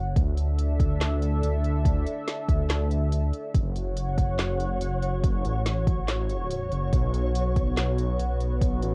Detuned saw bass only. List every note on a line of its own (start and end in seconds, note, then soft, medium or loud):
0.00 0.15 F#1 loud
0.16 1.42 D2 loud
1.43 2.05 D2 loud
2.49 3.32 D2 loud
3.54 4.80 F#1 loud
4.81 5.43 F#1 loud
5.45 6.70 A1 loud
6.71 6.91 F#1 loud
6.93 8.18 B1 loud
8.19 8.81 B1 loud
8.83 8.95 A1 medium